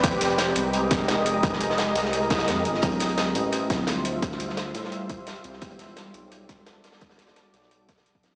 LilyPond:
<<
  \new Staff \with { instrumentName = "Ambient pad" } { \time 4/4 \key f \lydian \tempo 4 = 172 << { <g' bes' ees''>1~ | <g' bes' ees''>1 | <f' c'' e''>1~ | <f' c'' e''>1 |
<fis' a' d''>1~ | <fis' a' d''>1 | } \\ { aes1~ | aes1 | g1~ | g1~ |
g1~ | g1 | } >> }
  \new Staff \with { instrumentName = "Analog synth bass" } { \clef bass \time 4/4 \key f \lydian f,,4. c,4 f,,4. | f,,4. c,4. f,8 g,,8 | d,,4. a,,4 d,,4. | d,,4. a,,4 r4 c,8 |
e,,4. b,,4 e,,4. | e,,4. b,,4 r4 d,,8 | }
  \new DrumStaff \with { instrumentName = "Drums" } \drummode { \time 4/4 <hh bd>16 hh16 <hh sn>16 hh16 <hh sn>8 hh8 hh8 <hh bd sn>8 <hh sn>8 hh8 | <hh bd>16 sn16 hh16 sn16 <hh sn>8 <hh sn>16 sn16 hh16 hh16 <hh bd sn>16 <hh sn>16 <hh sn>8 hh16 sn16 | <hh bd>16 hh16 <hh sn>16 hh16 <hh sn>8 hh8 hh8 <hh bd sn>8 <hh sn>8 hh8 | <hh bd>16 sn16 hh16 sn16 <hh sn>8 <hh sn>16 sn16 hh8 <hh bd>8 <hh sn>16 hh16 hh16 sn16 |
<hh bd>16 hh16 <hh sn>16 hh16 <hh sn>8 hh8 hh8 <hh bd sn>8 <hh sn>8 <hh sn>16 <hh sn>16 | <hh bd sn>16 <hh sn>16 <hh sn>16 <hh sn>16 <hh sn>8 <hh sn>16 sn16 hh8 <hh bd sn>16 <hh sn>16 <hh sn>16 <hh bd>16 <hh sn>8 | }
>>